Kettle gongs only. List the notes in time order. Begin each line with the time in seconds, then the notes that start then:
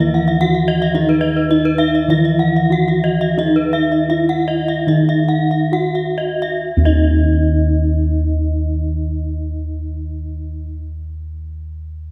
Already playing: D#3 A#4
0.41 E4
0.95 D#4
1.50 E4
2.09 D#3
2.71 E4
3.38 D#4
4.09 E4
4.87 D#3
5.72 E4
6.77 D#2